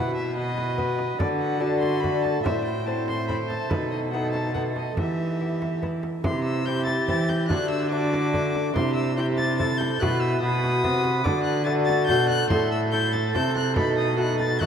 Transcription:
Already playing: lute B2 B3 E4 F#4, cello B2, trombone E4, viola B4, violin F#5
0.16 violin E5
0.36 trombone F#4, viola B4, violin D#5
0.58 frame drum
0.78 lute B3 F#4, frame drum
0.99 frame drum
1.19 lute D3, cello D3, trombone F#4, viola A4, violin D5, frame drum
1.40 violin F#5
1.60 lute A3 D4 F#4, trombone F#4, viola A4, violin A5
1.80 violin C6, frame drum
2.01 lute A3 D4 F#4, violin B5, frame drum
2.22 violin A5, frame drum
2.43 lute A2, cello A2, trombone E4, viola C5, violin E5, frame drum
2.64 violin G5
2.86 lute A3 C4 E4, trombone E4, viola C5, violin A5
3.07 violin C6, frame drum
3.28 lute A3 C4 E4, violin B5, frame drum
3.49 violin A5, frame drum
3.70 cello B2, lute B2, trombone D#4, viola A4, violin B4, frame drum
3.91 violin D#5
4.11 lute A3 B3 D#4, trombone D#4, viola A4, violin F#5
4.32 violin A5, frame drum
4.54 lute A3 B3 D#4, trombone D#4, viola A4, violin F#5, frame drum
4.76 violin D#5, frame drum
4.97 cello E3, lute E3, trombone E4, viola G4, violin E5, frame drum
5.41 lute B3 E4
5.62 frame drum
5.82 lute B3 E4, frame drum
6.03 frame drum
6.24 cello C3, lute C3, trombone E4, viola G4, violin C6, frame drum
6.44 violin E6
6.65 lute C4 E4, trombone E4, viola G4, violin G6
6.85 violin A6, frame drum
7.08 cello E3, lute E3 C4 E4, violin A6, frame drum
7.29 violin G6, frame drum
7.48 cello D3, lute D3, trombone D4, viola F#4, violin F#6, frame drum
7.70 violin E6
7.91 lute A3 D4, trombone D4, viola F#4, violin D6
8.13 frame drum
8.34 lute A3 D4, frame drum
8.55 frame drum
8.74 lute C3, cello C3, trombone E4, viola G4, violin C6, frame drum
8.95 violin E6
9.17 lute C4 E4, trombone E4, viola G4, violin G6
9.37 violin A6, frame drum
9.58 lute C4 E4, viola A4, violin A6, frame drum
9.77 violin G6, frame drum
10.00 lute B2 B3 E4 F#4, cello B2, trombone E4, viola B4, violin F#6, frame drum
10.20 violin E6
10.41 cello B2, lute B2, trombone F#4, viola B4, violin D#6
10.64 frame drum
10.83 cello C3, lute C3 B3 F#4, frame drum
11.04 frame drum
11.24 lute D3, cello D3, trombone F#4, viola A4, violin D6, frame drum
11.43 violin F#6
11.65 lute A3 D4 F#4, trombone F#4, viola A4, violin A6
11.85 violin A6, frame drum
12.06 cello B2, lute B2 A3 D4, violin G6, frame drum
12.11 lute F#4
12.29 violin F#6, frame drum
12.50 cello A2, lute A2, trombone E4, viola A4, violin C6, frame drum
12.72 violin E6
12.91 lute A3 E4 A4, violin G6
13.13 violin A6, frame drum
13.34 cello C3, lute C3 A3 E4 A4, violin G6, frame drum
13.56 violin F#6, frame drum
13.75 cello B2, lute B2, trombone D#4, viola A4, violin B5, frame drum
13.98 violin D#6
14.17 lute A3 D#4 F#4, trombone D#4, viola A4, violin F#6
14.40 violin A6, frame drum
14.59 cello D#3, lute D#3 A3 D#4 F#4, trombone D#4, viola A4, violin F#6, frame drum

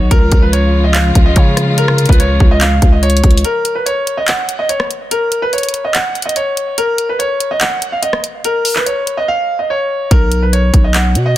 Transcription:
Already playing: 808-style bass B1
0.11 808-style bass C#2, string section C#3 F3 G#3 F4, grand piano A#4, kick, closed hi-hat
0.32 808-style bass C#2, kick, closed hi-hat
0.42 grand piano B4
0.53 grand piano C#5, closed hi-hat
0.84 grand piano D#5
0.94 grand piano F5, clap, closed hi-hat
1.15 808-style bass C#2, kick, closed hi-hat
1.26 grand piano D#5
1.36 808-style bass C#3, grand piano C#5, kick, closed hi-hat
1.57 cross-stick, closed hi-hat
1.78 grand piano A#4, closed hi-hat
1.88 cross-stick
1.98 closed hi-hat, open hi-hat
2.06 808-style bass C#2, grand piano B4, kick, closed hi-hat
2.13 closed hi-hat
2.20 grand piano C#5, closed hi-hat
2.40 808-style bass C#2, kick
2.51 grand piano D#5
2.61 grand piano F5, clap, closed hi-hat
2.82 808-style bass C#2, kick, closed hi-hat
2.92 grand piano D#5
3.03 grand piano C#5, closed hi-hat
3.10 closed hi-hat
3.17 closed hi-hat
3.24 808-style bass C#2, kick, closed hi-hat
3.31 closed hi-hat
3.38 closed hi-hat
3.45 grand piano A#4, closed hi-hat
3.65 closed hi-hat
3.75 grand piano B4
3.86 grand piano C#5, closed hi-hat
4.07 closed hi-hat
4.17 grand piano D#5
4.28 grand piano F#5, clap, closed hi-hat
4.49 closed hi-hat
4.59 grand piano D#5
4.69 grand piano C#5, closed hi-hat
4.80 cross-stick
4.91 closed hi-hat
5.11 grand piano A#4, closed hi-hat
5.32 closed hi-hat
5.42 grand piano B4
5.53 grand piano C#5, closed hi-hat
5.58 closed hi-hat
5.63 closed hi-hat
5.69 closed hi-hat
5.74 closed hi-hat
5.85 grand piano D#5
5.94 grand piano F#5, clap, closed hi-hat
6.15 closed hi-hat
6.22 grand piano D#5, closed hi-hat
6.29 closed hi-hat
6.36 grand piano C#5, closed hi-hat
6.57 closed hi-hat
6.78 grand piano A#4, closed hi-hat
6.98 closed hi-hat
7.09 grand piano B4
7.19 grand piano C#5, closed hi-hat
7.40 closed hi-hat
7.51 grand piano D#5
7.60 grand piano F#5, clap, closed hi-hat
7.82 closed hi-hat
7.92 grand piano F5
8.02 grand piano D#5, closed hi-hat
8.13 cross-stick
8.24 closed hi-hat
8.44 grand piano A#4, closed hi-hat
8.65 open hi-hat
8.76 grand piano B4, clap
8.86 grand piano C#5, closed hi-hat
9.07 closed hi-hat
9.17 grand piano D#5
9.28 grand piano F5
9.59 grand piano D#5
9.70 grand piano C#5
10.11 808-style bass B1, grand piano A#4, kick, closed hi-hat
10.32 closed hi-hat
10.42 grand piano B4
10.53 grand piano C#5, closed hi-hat
10.74 808-style bass B1, kick, closed hi-hat
10.84 grand piano D#5
10.94 grand piano F#5, clap, closed hi-hat
11.15 808-style bass B2, closed hi-hat
11.26 grand piano D#5

